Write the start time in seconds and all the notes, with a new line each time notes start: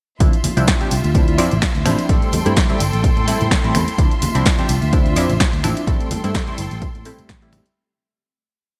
0.20 D2 F3 C4 D4 E4 F4 E5 C6, kick, closed hi-hat, tambourine
0.33 closed hi-hat, tambourine
0.44 open hi-hat, tambourine, high conga, low conga
0.57 C2 F3 C4 D4 E4, closed hi-hat, tambourine
0.67 kick, snare, closed hi-hat, tambourine
0.80 F3 C4 D4 G4, closed hi-hat, tambourine, high conga
0.91 C2, open hi-hat, tambourine
1.04 D2, closed hi-hat, tambourine
1.14 F3 C4 D4 E4, kick, closed hi-hat, tambourine, high conga
1.28 closed hi-hat, tambourine
1.38 F2 F3 C4 D4 E4, open hi-hat, tambourine
1.51 A1, closed hi-hat, tambourine, high conga
1.61 finger snap, kick, snare, closed hi-hat, tambourine
1.75 D2, closed hi-hat, tambourine
1.85 A1 F3 C4 D4 E4, finger snap, open hi-hat, tambourine, high conga
1.99 closed hi-hat, tambourine
2.09 A1 G3 A3 C4 A4 G5, kick, closed hi-hat
2.22 closed hi-hat, tambourine
2.32 open hi-hat, tambourine, high conga, low conga
2.45 G2 G3 A3 C4 E4, closed hi-hat, tambourine
2.56 kick, snare, closed hi-hat, tambourine
2.69 G3 A3 C4 E4, closed hi-hat, tambourine, high conga
2.80 G1, open hi-hat, tambourine
2.93 A1, closed hi-hat, tambourine
3.04 kick, closed hi-hat, tambourine, high conga
3.17 A2, closed hi-hat, tambourine, low conga
3.27 G3 A3 C4 E4, open hi-hat, tambourine
3.41 A2, closed hi-hat, tambourine, high conga
3.51 finger snap, kick, snare, closed hi-hat, tambourine
3.64 A1 G3 A3 C4 E4, closed hi-hat, tambourine
3.75 E2, finger snap, open hi-hat, tambourine, high conga
3.88 closed hi-hat, tambourine
3.98 D2 F3 C4 D4 E4 F4 E5, kick, closed hi-hat, tambourine
4.11 closed hi-hat, tambourine
4.22 open hi-hat, tambourine, high conga, low conga
4.35 C2 F3 C4 D4 E4, closed hi-hat, tambourine
4.46 kick, snare, closed hi-hat, tambourine
4.58 F3 C4 D4 G4, closed hi-hat, tambourine, high conga
4.69 C2, open hi-hat, tambourine
4.82 D2, closed hi-hat, tambourine
4.92 F3 C4 D4 E4, kick, closed hi-hat, tambourine, high conga
5.06 closed hi-hat, tambourine
5.16 F2 F3 C4 D4 E4, open hi-hat, tambourine
5.30 A1, closed hi-hat, tambourine, high conga
5.40 finger snap, kick, snare, closed hi-hat, tambourine
5.53 D2, closed hi-hat, tambourine
5.63 A1 F3 C4 D4 E4, finger snap, open hi-hat, tambourine, high conga
5.77 closed hi-hat, tambourine
5.87 A1 G3 A3 C4 A4 G5 C6, kick, closed hi-hat, tambourine
6.00 closed hi-hat, tambourine
6.11 open hi-hat, tambourine, high conga, low conga
6.24 G2 G3 A3 C4 E4, closed hi-hat, tambourine
6.34 kick, snare, closed hi-hat, tambourine
6.47 G3 A3 C4 E4, closed hi-hat, tambourine, high conga
6.58 G1, open hi-hat, tambourine
6.71 A1, closed hi-hat, tambourine
6.82 kick, closed hi-hat, tambourine, high conga
6.95 A2, closed hi-hat, tambourine, low conga
7.05 G3 A3 C4 E4, open hi-hat, tambourine
7.18 muted fingered electric bass stroke, closed hi-hat, tambourine, high conga
7.29 A1, finger snap, kick, snare, closed hi-hat, tambourine
7.42 G3 A3 C4 E4, closed hi-hat, tambourine
7.52 finger snap, open hi-hat, tambourine, high conga
7.66 closed hi-hat, tambourine